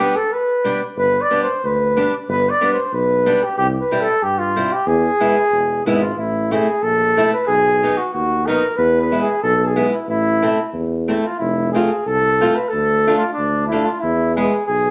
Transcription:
0.00 0.13 G3 medium
0.00 0.14 B3 medium
0.00 0.14 D4 medium
0.00 0.18 G4 loud
0.16 0.34 A4 medium
0.33 0.82 B4 medium
0.64 0.79 G3 medium
0.64 0.79 B3 medium
0.64 0.80 D4 medium
0.96 1.19 G1 medium
0.96 1.23 B4 loud
1.21 1.42 D5 medium
1.30 1.45 G3 medium
1.30 1.45 B3 soft
1.30 1.46 D4 medium
1.43 1.66 C5 medium
1.64 2.06 D2 medium
1.64 2.14 B4 medium
1.97 2.11 G3 medium
1.97 2.11 B3 soft
1.97 2.11 D4 medium
2.28 2.50 G1 loud
2.28 2.51 B4 loud
2.50 2.71 D5 medium
2.61 2.76 G3 medium
2.61 2.76 B3 medium
2.61 2.76 D4 medium
2.73 2.95 C5 medium
2.93 3.35 B1 medium
2.93 3.44 B4 loud
3.26 3.41 G3 medium
3.26 3.40 B3 medium
3.26 3.40 D4 medium
3.43 3.57 G4 medium
3.58 3.79 C2 loud
3.58 3.67 G4 loud
3.80 4.02 B4 medium
3.91 4.06 G3 medium
3.91 4.06 C4 medium
3.91 4.06 E4 medium
4.01 4.24 A4 medium
4.22 4.65 G2 medium
4.22 4.40 G4 medium
4.38 4.74 F4 medium
4.56 4.70 G3 medium
4.56 4.70 C4 medium
4.56 4.70 E4 medium
4.73 4.88 G4 medium
4.86 5.08 E2 loud
4.86 5.85 G#4 loud
5.20 5.35 G#3 medium
5.20 5.35 B3 medium
5.20 5.35 E4 medium
5.51 5.83 E1 medium
5.85 6.15 G#1 medium
5.85 6.01 G#3 medium
5.85 6.01 B3 medium
5.85 6.03 E4 medium
5.85 6.01 E4 medium
6.02 6.19 F4 medium
6.17 6.60 A1 medium
6.17 6.54 E4 medium
6.51 6.66 A3 medium
6.51 6.66 C4 soft
6.51 6.66 E4 medium
6.51 6.84 G#4 medium
6.82 7.25 A#1 medium
6.82 7.32 A4 loud
7.17 7.32 A3 medium
7.17 7.32 C4 medium
7.17 7.32 E4 medium
7.33 7.46 B4 medium
7.47 7.91 B1 medium
7.47 7.98 G#4 loud
7.83 7.97 F#3 medium
7.83 7.97 B3 medium
7.83 7.97 D#4 medium
7.97 8.13 F#4 medium
8.13 8.56 D#2 medium
8.13 8.48 F#4 medium
8.46 8.62 F#3 medium
8.46 8.62 B3 medium
8.46 8.62 D#4 medium
8.46 8.76 A#4 medium
8.77 9.21 E2 loud
8.77 8.98 B4 loud
9.01 9.21 B4 medium
9.11 9.26 G#3 medium
9.11 9.26 B3 soft
9.11 9.26 E4 medium
9.22 9.42 G#4 medium
9.42 9.86 B1 loud
9.42 9.63 A4 medium
9.66 9.86 G#4 medium
9.76 9.91 G#3 medium
9.76 9.91 B3 medium
9.76 9.91 E4 medium
9.88 10.08 E4 medium
10.07 10.51 A1 medium
10.07 10.71 E4 medium
10.42 10.57 A3 medium
10.42 10.57 C4 medium
10.42 10.57 E4 medium
10.73 11.17 E2 medium
11.08 11.23 A3 medium
11.08 11.23 C4 medium
11.08 11.26 E4 medium
11.08 11.23 E4 medium
11.24 11.40 F4 medium
11.39 11.83 F1 medium
11.39 11.71 E4 medium
11.72 11.89 A3 medium
11.72 11.89 C4 medium
11.72 11.90 F4 medium
11.72 12.03 G#4 medium
12.06 12.49 C2 medium
12.06 12.56 A4 loud
12.41 12.55 A3 medium
12.41 12.55 C4 medium
12.41 12.55 F4 medium
12.55 12.70 B4 medium
12.68 13.16 A4 loud
12.73 13.15 D2 medium
13.07 13.21 A3 medium
13.07 13.21 D4 medium
13.07 13.21 F4 medium
13.17 13.32 F4 medium
13.33 13.66 D4 medium
13.38 13.80 D2 medium
13.67 13.87 E4 medium
13.72 13.86 A3 medium
13.72 13.86 D4 medium
13.72 13.86 F4 medium
13.85 14.02 F4 medium
14.00 14.45 E2 loud
14.00 14.35 E4 medium
14.35 14.51 G#3 medium
14.35 14.51 B3 medium
14.35 14.51 E4 medium
14.35 14.65 G#4 medium
14.66 14.91 B1 medium
14.66 14.91 G#4 medium

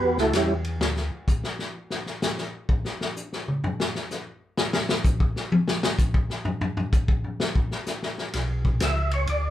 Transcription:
0.00 0.18 E2 medium
0.00 0.18 B3 medium
0.00 0.18 F#4 medium
0.00 0.18 G4 medium
0.00 0.18 B4 medium
0.18 0.33 C#2 medium
0.18 0.34 A3 medium
0.18 0.34 E4 medium
0.18 0.34 F#4 medium
0.18 0.34 A4 medium
0.18 snare soft
0.33 0.79 E2 medium
0.33 0.54 G3 medium
0.33 0.54 C#4 medium
0.33 0.54 E4 medium
0.33 0.54 G4 medium
0.33 snare medium
0.33 hi-hat pedal medium
0.33 ride medium
0.64 ride soft
0.80 1.10 D2 medium
0.80 snare medium
0.96 snare soft
1.27 kick medium
1.27 hi-hat pedal medium
1.44 snare soft
1.59 snare soft
1.90 snare soft
2.06 snare soft
2.22 snare medium
2.22 hi-hat pedal medium
2.38 snare soft
2.69 kick medium
2.85 snare soft
3.01 snare medium
3.16 hi-hat pedal medium
3.33 snare soft
3.48 mid tom soft
3.64 floor tom medium
3.80 snare medium
3.95 snare soft
4.11 snare soft
4.11 hi-hat pedal soft
4.57 snare medium
4.73 snare loud
4.89 snare loud
5.04 kick medium
5.04 hi-hat pedal medium
5.20 kick medium
5.36 snare soft
5.52 high tom medium
5.68 snare loud
5.83 snare loud
5.98 kick medium
5.98 hi-hat pedal medium
6.14 kick medium
6.30 snare soft
6.45 floor tom medium
6.61 floor tom medium
6.77 floor tom medium
6.92 kick medium
6.92 hi-hat pedal medium
7.08 kick medium
7.24 floor tom soft
7.40 snare medium
7.55 kick medium
7.71 snare soft
7.86 snare soft
7.86 hi-hat pedal medium
8.03 snare soft
8.18 snare soft
8.33 8.79 B1 medium
8.33 snare soft
8.33 ride medium
8.65 kick medium
8.80 9.26 C#2 medium
8.80 9.12 E5 medium
8.80 snare medium
8.80 hi-hat pedal medium
8.80 ride medium
9.11 9.28 C#5 loud
9.11 ride soft
9.27 9.50 D2 medium
9.27 9.50 D5 medium
9.27 ride medium

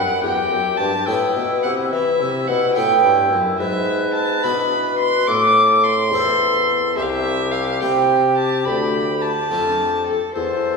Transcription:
0.00 0.21 F#2 medium
0.00 0.23 F#2 medium
0.00 0.22 B4 medium
0.00 0.23 F#5 medium
0.23 0.50 E2 medium
0.23 0.49 E2 medium
0.23 1.07 G4 medium
0.23 0.79 G5 medium
0.51 0.78 F#2 medium
0.51 0.76 F#2 soft
0.78 0.91 G2 medium
0.78 1.05 G2 medium
0.78 1.08 A5 medium
1.06 1.20 A2 medium
1.06 1.33 A2 medium
1.06 1.48 B3 soft
1.06 2.75 E4 medium
1.06 1.69 E4 soft
1.06 1.69 B4 soft
1.06 1.62 G5 medium
1.36 1.63 B2 medium
1.36 1.61 B2 medium
1.63 1.89 C3 medium
1.63 1.92 C3 medium
1.63 1.71 F#5 medium
1.92 2.22 E3 medium
1.92 2.18 E3 medium
1.92 2.49 E5 medium
2.20 2.47 C3 medium
2.20 2.45 C3 medium
2.48 2.75 B2 medium
2.48 2.73 B2 medium
2.48 2.74 F#5 medium
2.74 3.00 A2 soft
2.74 3.03 A2 medium
2.74 3.16 B3 soft
2.74 3.57 E4 medium
2.74 3.36 E4 soft
2.74 3.36 B4 soft
2.74 3.29 G5 medium
3.03 3.31 G2 medium
3.03 3.29 G2 medium
3.31 3.59 F#2 medium
3.31 3.57 F#2 medium
3.59 4.40 G#2 medium
3.59 5.30 B4 medium
3.59 4.11 E5 medium
4.15 4.45 A5 medium
4.43 5.26 B2 medium
4.43 5.24 B2 medium
4.43 5.04 D4 soft
4.43 5.05 E4 soft
4.43 5.05 B4 soft
4.43 4.99 B5 medium
4.99 5.29 C6 medium
5.27 6.13 A2 medium
5.27 6.08 A2 medium
5.27 5.97 A4 medium
5.27 5.86 D6 loud
5.84 6.97 C6 loud
6.11 6.98 E2 medium
6.11 6.93 E2 medium
6.11 6.73 C4 soft
6.11 6.74 E4 soft
6.11 6.74 A4 soft
6.11 6.99 A4 medium
6.97 7.81 C2 medium
6.97 7.78 C2 medium
6.97 7.81 G4 medium
6.97 7.05 E5 medium
7.04 7.11 F5 medium
7.10 7.53 E5 medium
7.52 7.82 F5 medium
7.80 8.64 C3 medium
7.80 8.62 C3 medium
7.80 8.43 C4 soft
7.80 8.43 E4 soft
7.80 8.43 G4 soft
7.80 10.04 G4 medium
7.80 8.37 G5 medium
8.38 8.67 A5 medium
8.66 9.33 D2 medium
8.66 9.46 D2 soft
8.66 9.23 B5 medium
9.21 10.07 A5 medium
9.50 10.06 F2 medium
9.50 10.04 F2 soft
9.50 10.12 A3 soft
9.50 10.12 D4 soft
9.50 10.12 F4 soft
10.07 10.35 A4 medium
10.35 10.77 E2 medium
10.35 10.77 A4 medium
10.35 10.77 C5 medium

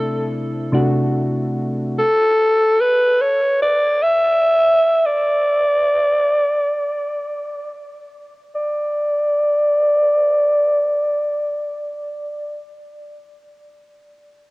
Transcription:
0.00 0.68 C3 medium
0.00 0.69 A3 medium
0.00 0.70 D4 medium
0.00 0.70 E4 medium
0.00 0.33 A4 medium
0.72 1.96 C3 medium
0.72 1.96 A3 medium
0.72 1.97 D4 medium
0.72 1.97 F#4 medium
1.99 2.82 A4 medium
2.81 3.22 B4 medium
3.21 3.62 C#5 medium
3.62 4.04 D5 medium
4.02 5.07 E5 loud
5.06 7.72 D5 loud
8.55 12.59 D5 loud

